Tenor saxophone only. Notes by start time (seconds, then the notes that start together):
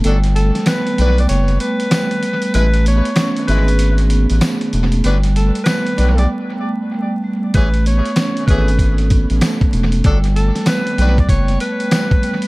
0.35 A4
0.68 B4
1.20 D5
1.29 C#5
1.61 B4
2.55 B4
2.87 C#5
3.47 B4
5.36 A4
5.64 B4
6.19 D5
7.55 B4
7.87 C#5
8.46 B4
10.35 A4
10.68 B4
11.20 D5
11.29 C#5
11.61 B4